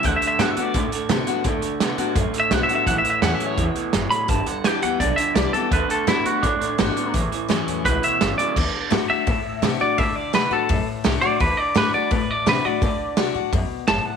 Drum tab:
CC |--------|--------|--------|--------|
HH |xxxxxxxx|xxxxxxxx|xxxxxxxx|xxxxxxxx|
SD |--o---o-|--o---o-|--o---o-|--o---o-|
BD |o---o---|o---o---|o---o---|o---o---|

CC |--------|--------|x-------|--------|
HH |xxxxxxxx|xxxxxxxx|--o-o-o-|o-o-o-o-|
SD |--o---o-|--o---o-|--o---o-|--o---o-|
BD |o---o---|o---o---|o---o---|o---o---|

CC |--------|--------|
HH |o-o-o-o-|o-o-o-o-|
SD |--o---o-|--o---o-|
BD |o---o---|o---o---|